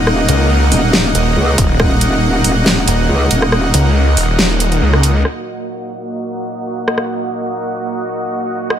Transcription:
0, 0, Header, 1, 5, 480
1, 0, Start_track
1, 0, Key_signature, -6, "minor"
1, 0, Tempo, 431655
1, 78, Time_signature, 4, 2, 24, 8
1, 9778, End_track
2, 0, Start_track
2, 0, Title_t, "Supersaw synth"
2, 0, Program_c, 0, 81
2, 0, Note_on_c, 0, 58, 77
2, 0, Note_on_c, 0, 63, 73
2, 0, Note_on_c, 0, 75, 72
2, 0, Note_on_c, 0, 78, 87
2, 5793, Note_off_c, 0, 58, 0
2, 5793, Note_off_c, 0, 63, 0
2, 5793, Note_off_c, 0, 75, 0
2, 5819, Note_off_c, 0, 78, 0
2, 5838, Note_on_c, 0, 58, 70
2, 5838, Note_on_c, 0, 66, 63
2, 5838, Note_on_c, 0, 75, 66
2, 5838, Note_on_c, 0, 78, 80
2, 9639, Note_off_c, 0, 58, 0
2, 9678, Note_on_c, 0, 59, 76
2, 9778, Note_off_c, 0, 59, 0
2, 9778, Note_off_c, 0, 66, 0
2, 9778, Note_off_c, 0, 75, 0
2, 9778, Note_off_c, 0, 78, 0
2, 9778, End_track
3, 0, Start_track
3, 0, Title_t, "Detuned saw bass"
3, 0, Program_c, 1, 39
3, 317, Note_on_c, 1, 37, 100
3, 780, Note_off_c, 1, 37, 0
3, 1277, Note_on_c, 1, 27, 97
3, 1500, Note_off_c, 1, 27, 0
3, 1757, Note_on_c, 1, 27, 101
3, 1980, Note_off_c, 1, 27, 0
3, 3198, Note_on_c, 1, 27, 98
3, 3420, Note_off_c, 1, 27, 0
3, 4157, Note_on_c, 1, 37, 98
3, 4620, Note_off_c, 1, 37, 0
3, 4637, Note_on_c, 1, 27, 101
3, 5339, Note_off_c, 1, 27, 0
3, 5357, Note_on_c, 1, 37, 99
3, 5820, Note_off_c, 1, 37, 0
3, 9778, End_track
4, 0, Start_track
4, 0, Title_t, "Wobble bass"
4, 0, Program_c, 2, 39
4, 0, Note_on_c, 2, 27, 100
4, 300, Note_off_c, 2, 27, 0
4, 797, Note_on_c, 2, 27, 99
4, 1260, Note_off_c, 2, 27, 0
4, 1517, Note_on_c, 2, 37, 94
4, 1739, Note_off_c, 2, 37, 0
4, 1997, Note_on_c, 2, 27, 98
4, 2700, Note_off_c, 2, 27, 0
4, 2718, Note_on_c, 2, 27, 100
4, 3180, Note_off_c, 2, 27, 0
4, 3437, Note_on_c, 2, 37, 95
4, 3660, Note_off_c, 2, 37, 0
4, 3677, Note_on_c, 2, 27, 96
4, 4140, Note_off_c, 2, 27, 0
4, 9778, End_track
5, 0, Start_track
5, 0, Title_t, "Drums"
5, 78, Note_on_c, 9, 37, 82
5, 189, Note_off_c, 9, 37, 0
5, 318, Note_on_c, 9, 42, 79
5, 429, Note_off_c, 9, 42, 0
5, 798, Note_on_c, 9, 46, 96
5, 909, Note_off_c, 9, 46, 0
5, 1038, Note_on_c, 9, 38, 114
5, 1149, Note_off_c, 9, 38, 0
5, 1278, Note_on_c, 9, 42, 78
5, 1389, Note_off_c, 9, 42, 0
5, 1757, Note_on_c, 9, 36, 106
5, 1758, Note_on_c, 9, 42, 79
5, 1868, Note_off_c, 9, 36, 0
5, 1869, Note_off_c, 9, 42, 0
5, 1997, Note_on_c, 9, 36, 115
5, 1998, Note_on_c, 9, 37, 83
5, 2108, Note_off_c, 9, 36, 0
5, 2109, Note_off_c, 9, 37, 0
5, 2238, Note_on_c, 9, 42, 81
5, 2349, Note_off_c, 9, 42, 0
5, 2718, Note_on_c, 9, 46, 106
5, 2829, Note_off_c, 9, 46, 0
5, 2958, Note_on_c, 9, 38, 109
5, 3069, Note_off_c, 9, 38, 0
5, 3197, Note_on_c, 9, 42, 81
5, 3309, Note_off_c, 9, 42, 0
5, 3677, Note_on_c, 9, 42, 81
5, 3789, Note_off_c, 9, 42, 0
5, 3806, Note_on_c, 9, 37, 86
5, 3917, Note_off_c, 9, 37, 0
5, 3917, Note_on_c, 9, 37, 83
5, 4029, Note_off_c, 9, 37, 0
5, 4157, Note_on_c, 9, 42, 84
5, 4269, Note_off_c, 9, 42, 0
5, 4637, Note_on_c, 9, 46, 101
5, 4749, Note_off_c, 9, 46, 0
5, 4877, Note_on_c, 9, 38, 120
5, 4989, Note_off_c, 9, 38, 0
5, 5118, Note_on_c, 9, 42, 83
5, 5229, Note_off_c, 9, 42, 0
5, 5247, Note_on_c, 9, 42, 37
5, 5358, Note_off_c, 9, 42, 0
5, 5487, Note_on_c, 9, 37, 64
5, 5598, Note_off_c, 9, 37, 0
5, 5598, Note_on_c, 9, 42, 86
5, 5709, Note_off_c, 9, 42, 0
5, 5838, Note_on_c, 9, 37, 64
5, 5949, Note_off_c, 9, 37, 0
5, 7647, Note_on_c, 9, 37, 69
5, 7758, Note_off_c, 9, 37, 0
5, 7758, Note_on_c, 9, 37, 63
5, 7869, Note_off_c, 9, 37, 0
5, 9678, Note_on_c, 9, 37, 65
5, 9778, Note_off_c, 9, 37, 0
5, 9778, End_track
0, 0, End_of_file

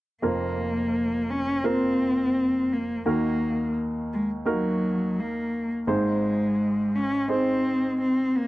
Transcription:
0, 0, Header, 1, 3, 480
1, 0, Start_track
1, 0, Tempo, 706714
1, 158, Time_signature, 4, 2, 24, 8
1, 5756, End_track
2, 0, Start_track
2, 0, Title_t, "Grand piano"
2, 0, Program_c, 0, 0
2, 151, Note_on_c, 0, 60, 44
2, 152, Note_on_c, 0, 58, 50
2, 153, Note_on_c, 0, 41, 42
2, 156, Note_on_c, 0, 29, 40
2, 157, Note_on_c, 0, 65, 46
2, 157, Note_on_c, 0, 70, 53
2, 299, Control_c, 0, 64, 127
2, 969, Note_off_c, 0, 60, 0
2, 970, Note_off_c, 0, 58, 0
2, 972, Note_off_c, 0, 65, 0
2, 972, Note_off_c, 0, 70, 0
2, 1114, Note_on_c, 0, 58, 49
2, 1115, Note_on_c, 0, 65, 45
2, 1116, Note_on_c, 0, 60, 44
2, 1117, Note_on_c, 0, 70, 58
2, 1931, Note_off_c, 0, 58, 0
2, 1931, Note_off_c, 0, 60, 0
2, 1931, Note_off_c, 0, 65, 0
2, 1932, Note_off_c, 0, 70, 0
2, 2048, Note_off_c, 0, 41, 0
2, 2050, Note_off_c, 0, 29, 0
2, 2076, Note_on_c, 0, 58, 52
2, 2076, Note_on_c, 0, 66, 46
2, 2077, Note_on_c, 0, 39, 45
2, 2078, Note_on_c, 0, 51, 45
2, 2078, Note_on_c, 0, 63, 46
2, 2083, Note_on_c, 0, 70, 57
2, 2087, Control_c, 0, 64, 0
2, 2193, Control_c, 0, 64, 127
2, 2892, Note_off_c, 0, 58, 0
2, 2892, Note_off_c, 0, 63, 0
2, 2892, Note_off_c, 0, 66, 0
2, 2895, Note_off_c, 0, 70, 0
2, 3026, Note_on_c, 0, 58, 49
2, 3030, Note_on_c, 0, 63, 45
2, 3030, Note_on_c, 0, 66, 47
2, 3032, Note_on_c, 0, 70, 60
2, 3846, Note_off_c, 0, 58, 0
2, 3848, Note_off_c, 0, 63, 0
2, 3848, Note_off_c, 0, 66, 0
2, 3849, Note_off_c, 0, 70, 0
2, 3970, Note_off_c, 0, 39, 0
2, 3971, Note_off_c, 0, 51, 0
2, 3988, Note_on_c, 0, 32, 43
2, 3989, Note_on_c, 0, 44, 48
2, 3989, Note_on_c, 0, 60, 52
2, 3989, Note_on_c, 0, 63, 48
2, 3992, Note_on_c, 0, 68, 48
2, 3993, Note_on_c, 0, 72, 62
2, 4006, Control_c, 0, 64, 0
2, 4111, Control_c, 0, 64, 127
2, 4808, Note_off_c, 0, 60, 0
2, 4808, Note_off_c, 0, 63, 0
2, 4809, Note_off_c, 0, 68, 0
2, 4810, Note_off_c, 0, 72, 0
2, 4947, Note_on_c, 0, 60, 56
2, 4951, Note_on_c, 0, 63, 46
2, 4954, Note_on_c, 0, 68, 46
2, 4957, Note_on_c, 0, 72, 58
2, 5756, Note_off_c, 0, 32, 0
2, 5756, Note_off_c, 0, 44, 0
2, 5756, Note_off_c, 0, 60, 0
2, 5756, Note_off_c, 0, 63, 0
2, 5756, Note_off_c, 0, 68, 0
2, 5756, Note_off_c, 0, 72, 0
2, 5756, End_track
3, 0, Start_track
3, 0, Title_t, "Cello"
3, 0, Program_c, 1, 42
3, 160, Note_on_c, 1, 58, 69
3, 886, Note_on_c, 1, 61, 75
3, 896, Note_off_c, 1, 58, 0
3, 1129, Note_on_c, 1, 60, 86
3, 1139, Note_off_c, 1, 61, 0
3, 1853, Note_on_c, 1, 58, 68
3, 1863, Note_off_c, 1, 60, 0
3, 2085, Note_off_c, 1, 58, 0
3, 2090, Note_on_c, 1, 58, 63
3, 2537, Note_off_c, 1, 58, 0
3, 2808, Note_on_c, 1, 56, 65
3, 2914, Note_off_c, 1, 56, 0
3, 3051, Note_on_c, 1, 54, 69
3, 3525, Note_on_c, 1, 58, 69
3, 3536, Note_off_c, 1, 54, 0
3, 3881, Note_off_c, 1, 58, 0
3, 4001, Note_on_c, 1, 56, 83
3, 4725, Note_on_c, 1, 61, 89
3, 4736, Note_off_c, 1, 56, 0
3, 4961, Note_off_c, 1, 61, 0
3, 4965, Note_on_c, 1, 60, 86
3, 5413, Note_off_c, 1, 60, 0
3, 5440, Note_on_c, 1, 60, 81
3, 5686, Note_on_c, 1, 58, 78
3, 5696, Note_off_c, 1, 60, 0
3, 5756, Note_off_c, 1, 58, 0
3, 5756, End_track
0, 0, End_of_file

